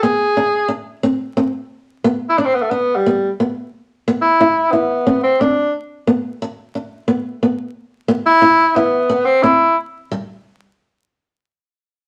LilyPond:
<<
  \new Staff \with { instrumentName = "Nylon-string guitar" } { \time 12/8 \key g \major \tempo 4. = 119 b4 d'4 d'4 c'4 c'4 r4 | b4 d'4 d'4 b4 b4 r4 | b4 e'4 e'4 c'4 c'4 r4 | b4 r4 d'4 b4 b4 r4 |
b4 e'4 e'4 r4 c'4 r4 | g8 r1 r4. | }
  \new Staff \with { instrumentName = "Tenor saxophone" } { \time 12/8 \key g \major gis'2 r1 | r8. e'16 d'16 c'16 b16 a16 b8. g4 r2 r16 | r8 e'4. b4. c'8 d'4 r4 | r1. |
r8 e'4. b4. c'8 e'4 r4 | r1. | }
>>